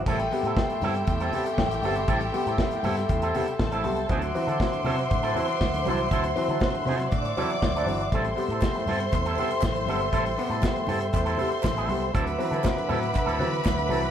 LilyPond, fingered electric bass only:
\new Staff \with { instrumentName = "Fingered electric bass" } { \clef bass \time 4/4 \key a \dorian \tempo 4 = 119 a,,8 r16 a,16 r8 g,8 e,8 r8 a,,8 g,,8 | a,,8 r16 a,16 r8 g,8 e,8 r8 a,,8 c,8 | d,8 r16 d16 r8 c8 a,8 r8 d,8 c,8 | d,8 r16 d16 r8 c8 a,8 r8 d,8 g,,8 |
a,,8 r16 a,16 r8 g,8 e,8 r8 a,,8 g,,8 | a,,8 r16 a,16 r8 g,8 e,8 r8 a,,8 c,8 | d,8 r16 d16 r8 a,8 r16 d,16 d8 d,8 c,8 | }